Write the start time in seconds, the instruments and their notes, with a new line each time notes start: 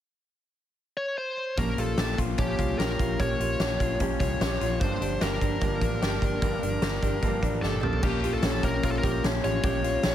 0.97 lead electric guitar C#5
1.18 lead electric guitar C5
1.57 fingered electric bass A#1, steel-string acoustic guitar A#2 F3 A#3 C#4 G4, lead electric guitar A#4, kick, closed hi-hat
1.77 fingered electric bass A#1, steel-string acoustic guitar A#3 C#4 G4, clean electric guitar F4, lead electric guitar A4, closed hi-hat
1.98 fingered electric bass A#1, steel-string acoustic guitar F3 A#3 C#4 G4, snare, closed hi-hat
2.18 fingered electric bass A#1, clean electric guitar F4, kick, closed hi-hat
2.38 fingered electric bass A#1, steel-string acoustic guitar A#2 F3 A#3 C#4 G4, lead electric guitar G4, kick, closed hi-hat
2.58 fingered electric bass C2, clean electric guitar F4, kick, closed hi-hat
2.78 fingered electric bass A#1, steel-string acoustic guitar F3 A#3 C#4 G4, lead electric guitar A#4, snare, closed hi-hat
2.98 fingered electric bass A#1, steel-string acoustic guitar A#3 C#4 G4, clean electric guitar F4, kick, closed hi-hat
3.18 fingered electric bass A#1, steel-string acoustic guitar A#2 F3 A#3 C#4 G4, lead electric guitar C#5, kick, closed hi-hat
3.39 fingered electric bass A#1, steel-string acoustic guitar A#3 C#4 G4, clean electric guitar F4, closed hi-hat
3.59 fingered electric bass A#1, steel-string acoustic guitar F3 A#3 C#4 G4, snare, closed hi-hat
3.80 fingered electric bass A#1, clean electric guitar F4, kick, closed hi-hat
4.00 fingered electric bass A#1, steel-string acoustic guitar A#2 F3 A#3 C#4 G4, kick, closed hi-hat
4.20 fingered electric bass C2, clean electric guitar F4, lead electric guitar C#5, kick, closed hi-hat
4.40 fingered electric bass A#1, steel-string acoustic guitar F3 A#3 C#4 G4, snare, closed hi-hat
4.61 fingered electric bass A#1, clean electric guitar F4, closed hi-hat
4.80 fingered electric bass G1, steel-string acoustic guitar G2 D3 F3 A#3 D4 G4, lead electric guitar C5, kick, closed hi-hat
5.01 fingered electric bass G1, steel-string acoustic guitar F3 A#3 D4 G4, closed hi-hat
5.21 fingered electric bass G1, steel-string acoustic guitar F3 A#3 D4 G4, lead electric guitar A#4, snare, closed hi-hat
5.41 fingered electric bass G1, steel-string acoustic guitar F3 A#3 D4 G4, kick, closed hi-hat
5.61 fingered electric bass G1, steel-string acoustic guitar G2 D3 F3 A#3 D4 G4, kick, closed hi-hat
5.82 fingered electric bass A1, clean electric guitar D4, kick, closed hi-hat
6.01 fingered electric bass G1, steel-string acoustic guitar F3 A#3 D4 G4, snare, closed hi-hat
6.22 fingered electric bass G1, steel-string acoustic guitar F3 A#3 D4 G4, kick, closed hi-hat
6.42 fingered electric bass G1, steel-string acoustic guitar G2 D3 F3 A#3 D4 G4, kick, closed hi-hat
6.62 fingered electric bass G1, steel-string acoustic guitar F3 A#3 D4 G4, closed hi-hat
6.82 fingered electric bass G1, steel-string acoustic guitar F3 A#3 D4 G4, snare, closed hi-hat
7.02 fingered electric bass G1, steel-string acoustic guitar F3 A#3 D4 G4, kick, closed hi-hat
7.22 fingered electric bass G1, steel-string acoustic guitar G2 D3 F3 A#3 D4 G4, kick, closed hi-hat
7.43 fingered electric bass A1, clean electric guitar D4, kick, closed hi-hat
7.62 fingered electric bass G1, steel-string acoustic guitar F3 A#3 D4 G4, lead electric guitar A4, snare
7.73 high tom
7.82 fingered electric bass A#1, steel-string acoustic guitar A#2 F3 A#3 C#4 G4, mid tom
7.93 floor tom
8.02 fingered electric bass A#1, steel-string acoustic guitar A#2 F3 A#3 C#4 G4, lead electric guitar G4, kick, crash
8.23 steel-string acoustic guitar A#3 C#4 G4, clean electric guitar F4, closed hi-hat
8.34 lead electric guitar A4
8.43 fingered electric bass A#1, steel-string acoustic guitar A#2 F3 A#3 C#4 G4, snare, closed hi-hat
8.63 fingered electric bass A#1, steel-string acoustic guitar A#3 C#4 G4, lead electric guitar A#4, kick, closed hi-hat
8.83 fingered electric bass A#1, clean electric guitar F4, lead electric guitar A#4, kick, closed hi-hat
8.91 lead electric guitar A4
8.99 steel-string acoustic guitar G4, lead electric guitar A#4
9.03 fingered electric bass A#1, steel-string acoustic guitar A#3 C#4, kick, closed hi-hat
9.23 fingered electric bass A#1, steel-string acoustic guitar A#2 F3 A#3 C#4 G4, snare, closed hi-hat
9.43 fingered electric bass A1, steel-string acoustic guitar A#3 C#4 G4, clean electric guitar F4, lead electric guitar C#5, closed hi-hat
9.63 fingered electric bass A#1, steel-string acoustic guitar A#2 F3 A#3 C#4 G4, lead electric guitar C#5, kick, closed hi-hat
9.83 steel-string acoustic guitar A#3 C#4 G4, clean electric guitar F4, closed hi-hat
10.03 fingered electric bass A#1, steel-string acoustic guitar A#2 F3 A#3 C#4 G4, snare, closed hi-hat